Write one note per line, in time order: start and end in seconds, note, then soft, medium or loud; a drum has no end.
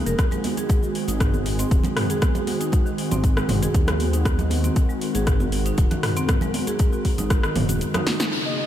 0.00 0.15 C#3 medium
0.00 8.28 G#3 medium
0.00 0.15 A#3 medium
0.00 0.15 F4 medium
0.00 0.15 G#4 medium
0.06 0.15 F1 loud
0.06 0.18 A#4 loud
0.06 closed hi-hat soft
0.06 shaker medium
0.19 8.28 D#3 medium
0.19 8.28 C4 medium
0.19 8.28 F#4 medium
0.19 4.22 G#4 medium
0.19 kick loud
0.19 cross-stick medium
0.19 closed hi-hat medium
0.19 muted conga soft
0.19 high conga medium
0.19 shaker medium
0.31 0.38 G#3 medium
0.31 closed hi-hat soft
0.31 low conga medium
0.31 shaker soft
0.44 open hi-hat medium
0.44 high conga loud
0.57 0.69 G#4 loud
0.57 closed hi-hat soft
0.57 high conga medium
0.57 shaker medium
0.69 kick loud
0.69 closed hi-hat medium
0.69 muted conga soft
0.69 shaker medium
0.83 0.94 F#4 medium
0.83 shaker soft
0.95 open hi-hat medium
1.08 1.65 G#1 loud
1.08 1.20 D#4 medium
1.08 closed hi-hat soft
1.08 muted conga soft
1.08 shaker medium
1.20 kick loud
1.20 cross-stick medium
1.20 closed hi-hat medium
1.20 mid tom medium
1.20 shaker medium
1.34 1.45 D#3 medium
1.34 high conga medium
1.34 shaker soft
1.46 open hi-hat medium
1.46 muted conga soft
1.59 1.70 C4 loud
1.59 closed hi-hat soft
1.59 shaker medium
1.71 1.80 D#1 medium
1.71 kick loud
1.71 closed hi-hat medium
1.71 shaker medium
1.83 1.91 G#3 medium
1.83 closed hi-hat medium
1.83 muted conga soft
1.83 low conga medium
1.83 shaker soft
1.97 cross-stick medium
1.97 mid tom loud
1.97 open hi-hat medium
2.10 2.21 G#4 loud
2.10 closed hi-hat soft
2.10 shaker medium
2.22 kick loud
2.22 cross-stick medium
2.22 closed hi-hat medium
2.22 muted conga medium
2.22 high conga medium
2.22 shaker medium
2.35 2.46 F#4 medium
2.35 closed hi-hat soft
2.35 low conga medium
2.35 shaker soft
2.47 open hi-hat medium
2.47 high conga medium
2.61 2.72 D#4 medium
2.61 closed hi-hat soft
2.61 shaker medium
2.72 kick loud
2.72 closed hi-hat medium
2.72 muted conga soft
2.72 shaker medium
2.86 2.97 D#3 medium
2.86 shaker soft
2.98 open hi-hat medium
3.11 3.43 G#1 loud
3.11 3.23 C4 loud
3.11 closed hi-hat soft
3.11 muted conga medium
3.11 low conga medium
3.11 shaker medium
3.24 kick loud
3.24 closed hi-hat medium
3.24 shaker medium
3.37 3.44 G#3 medium
3.37 cross-stick medium
3.37 shaker soft
3.49 3.67 G#1 loud
3.49 mid tom loud
3.49 open hi-hat medium
3.49 muted conga soft
3.49 high conga medium
3.49 low conga medium
3.62 3.74 G#4 loud
3.62 closed hi-hat soft
3.62 shaker medium
3.74 4.70 D#2 medium
3.74 kick loud
3.74 closed hi-hat medium
3.74 shaker medium
3.88 3.99 F#4 medium
3.88 cross-stick medium
3.88 closed hi-hat soft
3.88 muted conga soft
3.88 low conga loud
3.88 shaker soft
4.00 open hi-hat medium
4.00 high conga medium
4.13 4.25 D#4 medium
4.13 closed hi-hat soft
4.13 shaker medium
4.25 8.28 A#4 medium
4.25 kick loud
4.25 cross-stick medium
4.25 closed hi-hat medium
4.25 muted conga medium
4.25 high conga medium
4.25 shaker medium
4.39 4.50 D#3 medium
4.39 closed hi-hat soft
4.39 low conga medium
4.39 shaker soft
4.50 open hi-hat medium
4.50 high conga medium
4.64 4.75 C4 loud
4.64 closed hi-hat soft
4.64 high conga medium
4.64 shaker medium
4.76 kick loud
4.76 closed hi-hat medium
4.76 muted conga soft
4.76 shaker medium
4.89 4.96 G#3 medium
4.89 shaker soft
5.01 open hi-hat medium
5.15 5.72 G#1 loud
5.15 5.26 G#4 loud
5.15 closed hi-hat soft
5.15 muted conga medium
5.15 shaker medium
5.27 kick loud
5.27 cross-stick medium
5.27 closed hi-hat medium
5.27 mid tom medium
5.27 shaker medium
5.40 5.51 F#4 medium
5.40 high conga medium
5.40 shaker soft
5.52 open hi-hat medium
5.52 muted conga soft
5.66 5.77 D#4 medium
5.66 closed hi-hat soft
5.66 shaker medium
5.78 5.87 D#1 medium
5.78 kick loud
5.78 closed hi-hat medium
5.78 shaker medium
5.91 6.02 D#3 medium
5.91 closed hi-hat medium
5.91 muted conga medium
5.91 low conga loud
5.91 shaker soft
6.03 cross-stick medium
6.03 mid tom loud
6.03 open hi-hat medium
6.17 6.28 C4 loud
6.17 closed hi-hat soft
6.17 shaker medium
6.28 kick loud
6.28 cross-stick medium
6.28 closed hi-hat medium
6.28 mid tom medium
6.28 muted conga medium
6.28 high conga medium
6.28 shaker medium
6.41 6.49 G#3 medium
6.41 closed hi-hat soft
6.41 low conga medium
6.41 shaker soft
6.54 open hi-hat loud
6.54 high conga medium
6.67 6.79 G#4 loud
6.67 closed hi-hat soft
6.67 high conga medium
6.67 shaker medium
6.79 kick loud
6.79 closed hi-hat medium
6.79 muted conga soft
6.79 shaker medium
6.93 7.04 F#4 medium
6.93 shaker soft
7.05 kick medium
7.05 open hi-hat medium
7.18 7.50 G#1 loud
7.18 7.30 D#4 medium
7.18 closed hi-hat soft
7.18 muted conga medium
7.18 low conga medium
7.18 shaker medium
7.30 kick loud
7.30 cross-stick medium
7.30 closed hi-hat medium
7.30 shaker medium
7.43 7.55 D#3 medium
7.43 cross-stick medium
7.43 shaker soft
7.56 7.81 D#1 medium
7.56 mid tom medium
7.56 open hi-hat medium
7.56 muted conga soft
7.56 high conga medium
7.56 low conga loud
7.69 7.80 F#4 medium
7.69 closed hi-hat soft
7.69 shaker medium
7.81 closed hi-hat medium
7.81 shaker medium
7.94 8.06 D#4 medium
7.94 cross-stick medium
7.94 closed hi-hat medium
7.94 high tom medium
7.94 muted conga medium
7.94 low conga loud
7.94 shaker soft
8.06 snare medium
8.06 open hi-hat medium
8.06 high conga medium
8.20 8.27 D#4 medium
8.20 snare medium
8.20 closed hi-hat soft
8.20 shaker medium
8.32 8.66 C#3 medium
8.32 8.66 G#3 medium
8.32 8.66 A#3 medium
8.32 8.66 F4 medium
8.32 8.66 G#4 medium
8.32 downlifter medium
8.45 8.53 D#5 medium
8.58 8.66 D#5 medium